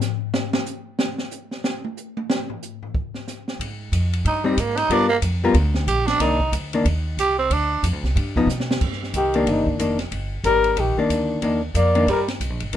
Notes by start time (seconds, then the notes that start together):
0.01 snare, hi-hat pedal
0.34 snare
0.53 snare
0.66 hi-hat pedal
0.99 snare
1.18 snare
1.31 hi-hat pedal
1.51 snare
1.64 snare
1.84 high tom
1.97 hi-hat pedal
2.17 high tom
2.30 snare
2.50 floor tom
2.63 hi-hat pedal
2.83 floor tom
2.94 kick
3.14 snare
3.28 snare, hi-hat pedal
3.48 snare
3.59 G#2, kick, ride
3.92 F2, kick, hi-hat pedal, ride
4.13 ride
4.25 G2 D#4, kick, ride
4.44 G3 C4 D#4
4.57 G#2 A#3, kick, hi-hat pedal, ride
4.77 D#4, snare, ride
4.89 G2 G3 B3 D4 F4 A#4, kick, ride
5.09 A#3
5.22 F2, kick, hi-hat pedal, ride
5.44 G3 B3 F4 A#4
5.54 D2, kick, ride
5.74 snare
5.87 A#1 G4, kick, hi-hat pedal, ride
6.07 D4, snare, ride
6.20 C2 D#3 A#3 D4 D#4, kick, snare, ride
6.40 kick
6.52 D2, kick, hi-hat pedal, ride
6.73 D#3 A#3 D4, ride
6.85 D#2, kick, ride
7.17 C2 G4, kick, hi-hat pedal, ride
7.39 C4
7.50 D2 D4, kick, ride
7.83 F2, kick, hi-hat pedal, ride
7.93 D2
8.03 C2, snare
8.16 G2, kick, ride
8.36 F3 B3 D#4, kick
8.47 B2, snare, hi-hat pedal
8.60 snare
8.71 snare
8.81 G2, kick, crash
8.92 snare
9.03 snare
9.13 C2 D#3 G4, kick, hi-hat pedal, ride
9.34 D#3 A#3 D4, ride
9.46 G1 C3 D#4, kick, ride
9.67 kick
9.79 F1 D#3 A#3 D4, kick, hi-hat pedal, ride
9.99 snare, ride
10.11 G1, kick, ride
10.44 G#1 G3 A#4, kick, hi-hat pedal, ride
10.64 ride
10.77 A#1 D#3 G4, kick, ride
10.96 D#3 A#3 D4, muted upright bass stroke
11.09 D2, kick, hi-hat pedal, ride
11.42 D#2 D#3 A#3 D4, kick, ride
11.74 F2 A#3 D5, kick, hi-hat pedal, ride
11.95 D#3 A#3 D4, ride
12.07 G2 G3 A#4, kick, ride
12.28 snare, ride
12.40 C2, kick, hi-hat pedal, ride
12.50 A#1
12.60 G1, ride
12.73 D#2, kick, ride